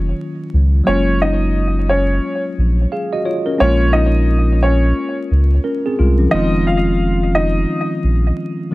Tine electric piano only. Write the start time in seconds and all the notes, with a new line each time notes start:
Already playing: D#3 F#3 A#3 C#4 F4
0.84 F#3 G#3 A#3
0.88 C#4 F4
2.92 G#4 F5
3.12 F#4 D#5
3.25 F4 C#5
3.46 C#4 A#4
3.58 G#3 A#3 C#4
3.64 F4
5.64 C#4 A#4
5.86 C4 G#4
5.99 G#3 F4
6.19 F3 C#4
6.30 D#3 F3 G#3
6.34 C4 F4
8.71 D#3 F3